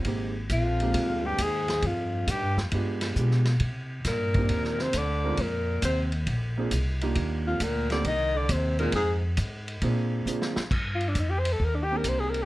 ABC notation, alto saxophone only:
X:1
M:4/4
L:1/16
Q:"Swing" 1/4=135
K:Eb
V:1 name="Alto saxophone"
z4 F6 G2 A4 | F4 G2 z8 z2 | z4 B6 c2 d4 | B4 c2 z8 z2 |
z2 F2 B2 d2 e2 d2 c2 B2 | A2 z12 z2 | [K:Cm] z2 F D E G c =A B D G B c _A B z |]